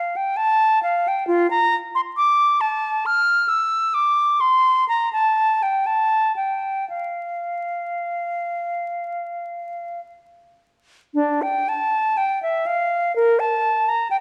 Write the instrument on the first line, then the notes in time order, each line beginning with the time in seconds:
flute
Already playing: F5
0.16 G5
0.37 A5
0.83 F5
1.08 G5
1.27 F4
1.50 A#5
1.95 C6
2.17 D6
2.61 A5
3.06 F6
3.48 E6
3.94 D6
4.40 C6
4.89 A#5
5.13 A5
5.63 G5
5.86 A5
6.36 G5
6.90 F5
11.15 D4
11.42 G5
11.69 A5
12.17 G5
12.43 E5
12.66 F5
13.16 A#4
13.40 A5
13.89 A#5
14.11 G5